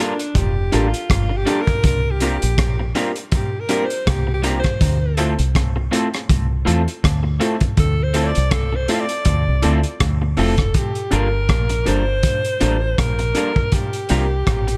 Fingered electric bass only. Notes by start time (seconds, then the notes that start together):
0.36 F1
0.74 A1
1.11 G1
1.85 C2
2.43 A#1
4.08 C2
4.82 D2
5.40 C2
6.30 C2
6.68 E2
7.05 D2
7.78 D2
8.37 C2
9.26 D2
9.49 C2
9.65 D2
10.01 D2
10.39 F1
11.13 G1
11.50 A#1
11.88 G1
12.62 A1
12.99 A#1
14.11 C2
14.47 A1